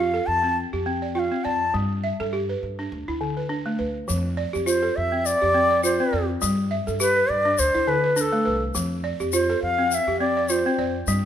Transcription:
Already playing: upright bass F2, balafon F4 G4 D5, bansuri F5
0.14 balafon A4
0.26 upright bass F2, bansuri A5
0.43 balafon C4
0.73 upright bass F2, balafon G4
0.86 balafon C4
1.02 balafon D5
1.15 balafon F4, bansuri G5
1.19 bansuri F5
1.31 balafon C4
1.44 upright bass F2, balafon D5, bansuri A5
1.74 upright bass G2, balafon G3
2.04 balafon E5
2.20 upright bass G2, balafon A4
2.33 balafon G4
2.49 balafon B4
2.63 upright bass G2
2.79 balafon D4
2.92 upright bass D2
3.08 upright bass D2, balafon E4
3.21 balafon D3
3.37 balafon B4
3.49 balafon D4
3.66 balafon A3
3.79 upright bass D2, balafon B4
4.08 upright bass F2, balafon F3, shaker
4.37 balafon D5
4.53 upright bass F2, balafon G4, shaker
4.66 balafon F4, bansuri C5, shaker
4.82 balafon A4
4.96 upright bass F2, bansuri E5
5.12 balafon C4
5.26 bansuri D5, shaker
5.42 upright bass F2, balafon G4
5.54 balafon C4
5.71 balafon D5
5.83 balafon F4, bansuri C5, shaker
6.00 balafon C4
6.13 upright bass F2, balafon D5
6.42 upright bass G2, balafon G3, shaker
6.71 balafon E5
6.87 upright bass G2, balafon A4, shaker
7.00 balafon G4, bansuri B4, shaker
7.16 balafon B4
7.30 upright bass G2, bansuri D5
7.45 balafon D4
7.58 upright bass D2, bansuri C5, shaker
7.74 upright bass D2, balafon E4
7.87 balafon D3, bansuri B4
8.04 balafon B4
8.16 balafon D4, bansuri B4, shaker
8.21 bansuri A4
8.32 balafon A3
8.45 upright bass C2, balafon B4
8.75 upright bass F2, balafon F3, shaker
9.04 balafon D5
9.20 upright bass F2, balafon G4, shaker
9.33 balafon F4, bansuri C5, shaker
9.50 balafon A4
9.62 upright bass F2, bansuri F5
9.78 balafon C4
9.91 bansuri E5 F5, shaker
10.07 upright bass F2, balafon G4
10.20 balafon C4, bansuri D5
10.37 balafon D5
10.49 balafon F4, bansuri C5, shaker
10.66 balafon C4
10.78 upright bass F2, balafon D5
11.07 upright bass G2, balafon G3, shaker

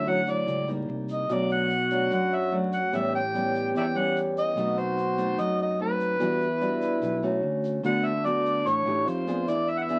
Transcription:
Already playing: fingered electric bass D2, nylon-string guitar D3, harmonica E5
0.06 nylon-string guitar F#3 C#4 E4, harmonica F#5
0.27 nylon-string guitar F#3 E4, harmonica D5, shaker
0.47 fingered electric bass C#2, nylon-string guitar A2, shaker
0.67 nylon-string guitar G3 A#3 D#4, shaker
0.89 fingered electric bass C2
1.09 harmonica D#5, shaker
1.29 fingered electric bass B1, nylon-string guitar B2 F#3 A3 D4, trombone F#4, harmonica D5, shaker
1.50 harmonica F#5, shaker
1.70 shaker
1.90 nylon-string guitar F#3 A3 D4, shaker
2.11 fingered electric bass F#2, nylon-string guitar F#2, harmonica F#5, shaker
2.32 harmonica E5, shaker
2.52 nylon-string guitar F#3 A3 D4
2.72 harmonica F#5, shaker
2.92 fingered electric bass A1, nylon-string guitar A2 G3 B3 C#4, trombone G4, harmonica E5, shaker
3.14 harmonica G5, shaker
3.34 nylon-string guitar G3 B3 C#4, shaker
3.55 shaker
3.75 fingered electric bass E2, nylon-string guitar E3, harmonica D5 E5 G5, shaker
3.95 nylon-string guitar G3 B3 C#4, harmonica F#5, shaker
4.16 shaker
4.37 harmonica D#5, shaker
4.56 fingered electric bass B1, nylon-string guitar B2 A3 C4 D#4, trombone F#4, shaker
4.78 harmonica C5, shaker
4.98 shaker
5.17 nylon-string guitar A3 C4 D#4, shaker
5.38 fingered electric bass F#2, nylon-string guitar F#3, harmonica D#5, shaker
5.59 harmonica D#5, shaker
5.79 nylon-string guitar A3 C4 D#4, harmonica B4
6.00 shaker
6.20 fingered electric bass E2, nylon-string guitar E3 G3 D4 F#4, trombone E4, shaker
6.41 shaker
6.61 nylon-string guitar G3 D4 F#4, shaker
6.81 shaker
7.02 fingered electric bass B1, nylon-string guitar B2, shaker
7.22 nylon-string guitar A3 C#4 F#4, shaker
7.43 fingered electric bass D2, trombone C#4
7.64 shaker
7.83 fingered electric bass D2, nylon-string guitar D3 A3 B3 F#4, trombone D4, harmonica F#5, shaker
8.04 harmonica E5, shaker
8.25 nylon-string guitar A3 B3 F#4, harmonica D5, shaker
8.46 shaker
8.65 fingered electric bass A1, nylon-string guitar A2, harmonica C#5, shaker
8.85 fingered electric bass A1, nylon-string guitar A3 D#4 G4, shaker
9.06 fingered electric bass F2, trombone F4, harmonica C5, shaker
9.27 nylon-string guitar B3 D4 G#4, shaker
9.47 fingered electric bass E2, nylon-string guitar E3, trombone E4, harmonica D5, shaker
9.68 harmonica E5, shaker
9.78 harmonica F#5
9.83 harmonica E5
9.89 nylon-string guitar B3 D4 G#4, shaker

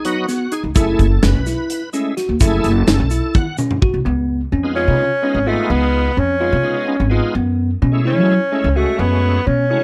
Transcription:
Already playing: tine electric piano D#4
0.05 tonewheel organ F#3 B3 D#4 F#4, closed hi-hat
0.28 tine electric piano B3, snare, closed hi-hat, shaker
0.52 tine electric piano D#4, tonewheel organ G#4, closed hi-hat
0.64 upright bass C#2
0.75 upright bass F#1, tonewheel organ A3 E4 G#4 A4, tine electric piano E4, kick, closed hi-hat, shaker
0.99 upright bass F#1, kick, closed hi-hat
1.23 upright bass F#1, tine electric piano C#4, tonewheel organ B4, snare, closed hi-hat
1.35 upright bass B1
1.46 tine electric piano E4, snare, closed hi-hat, shaker
1.70 closed hi-hat
1.93 tonewheel organ G#3 A3 E4, tine electric piano C#4, closed hi-hat, shaker
2.17 tine electric piano F#4, snare, closed hi-hat
2.29 upright bass D#2
2.40 upright bass F#1, tonewheel organ A3 E4 G#4 A4, tine electric piano E4, kick, closed hi-hat, shaker
2.64 upright bass F#1, closed hi-hat
2.87 upright bass F#1, tine electric piano C#4, snare, closed hi-hat, shaker
3.00 upright bass B1
3.11 tine electric piano E4, closed hi-hat, shaker
3.34 tonewheel organ F#5, kick, high tom, shaker
3.58 tine electric piano C#4, mid tom, shaker
3.71 mid tom
3.82 tine electric piano F#4, kick
3.94 upright bass C2
4.05 upright bass C#2, tine electric piano B3
4.52 upright bass F2, tine electric piano C#4
4.63 tonewheel organ G#3 B3 D#4 F4
4.76 tenor saxophone C#4, tine electric piano F4
4.88 upright bass C#3
5.22 tonewheel organ G#3 B3 D#4 F4, tine electric piano C#4
5.35 upright bass G#1
5.46 tonewheel organ G#3 B3 D#4 F4, tenor saxophone A3, tine electric piano F4
5.70 upright bass C#2, tine electric piano B3, tenor saxophone B3
6.17 upright bass F2, tine electric piano C#4, tenor saxophone C#4
6.40 tonewheel organ G#3 B3 D#4 F4, tine electric piano F4
6.52 upright bass C#3
6.62 tonewheel organ G#3 B3 D#4 F4
6.88 tine electric piano C#4
7.00 upright bass G#1
7.10 tonewheel organ G#3 B3 D#4 F4, tine electric piano F4
7.35 upright bass F#2, tine electric piano B3
7.82 upright bass B2, tine electric piano C#4
7.92 tonewheel organ G#3 A3 C#4 E4
8.05 tenor saxophone C#4, tine electric piano E4
8.17 upright bass F#3
8.52 tonewheel organ G#3 A3 C#4 E4, tine electric piano C#4
8.64 upright bass C#2
8.75 tonewheel organ G#3 A3 C#4 F#4, tenor saxophone A3, tine electric piano F#4
8.99 upright bass F#2, tenor saxophone B3, tine electric piano B3
9.46 upright bass B2, tenor saxophone C#4, tine electric piano C#4
9.70 tonewheel organ G#3 A3 C#4 F#4, tine electric piano E4

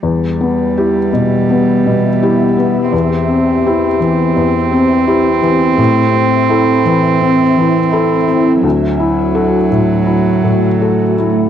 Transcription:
0.02 felt piano E2, cello G3, ambient pad B3 G4 E5
0.41 felt piano B3
0.77 felt piano E4 G4
1.13 felt piano B2
1.50 felt piano B3
1.86 felt piano B2
2.22 felt piano E4 G4
2.57 felt piano B3
2.92 felt piano E2, ambient pad C4, cello C4
3.28 felt piano C4
3.67 felt piano E4 G4
4.00 felt piano E3
4.36 felt piano E2
4.72 felt piano C4
5.07 felt piano E4 G4
5.42 felt piano E3
5.78 felt piano A2, ambient pad E4 E5
6.14 felt piano C4
6.50 felt piano E4 A4
6.85 felt piano E3
7.22 felt piano C4
7.57 felt piano E3
7.92 felt piano E4 A4
8.28 felt piano C4
8.63 felt piano D2, cello F#3, ambient pad A3 F#4
9.00 felt piano E4
9.35 felt piano F#4 A4
9.71 felt piano A2
10.06 felt piano E4
10.44 felt piano A2
10.81 felt piano F#4 A4
11.18 felt piano E4

